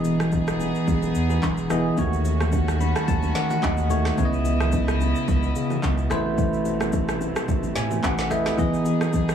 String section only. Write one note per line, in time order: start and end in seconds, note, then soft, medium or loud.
0.00 1.96 E3 medium
0.00 1.96 B3 medium
0.00 1.96 D#4 medium
0.00 1.96 G#4 medium
1.98 4.16 D#3 medium
1.98 4.16 A3 medium
1.98 4.16 C#4 medium
1.98 4.16 F#4 medium
4.18 8.54 B2 medium
4.18 6.09 C#3 medium
4.18 6.09 E4 medium
4.18 6.09 D#5 medium
6.10 8.56 C3 medium
6.10 8.56 A3 medium
8.59 9.35 E3 medium
8.59 9.35 B3 medium
8.59 9.35 D#4 medium
8.59 9.35 G#4 medium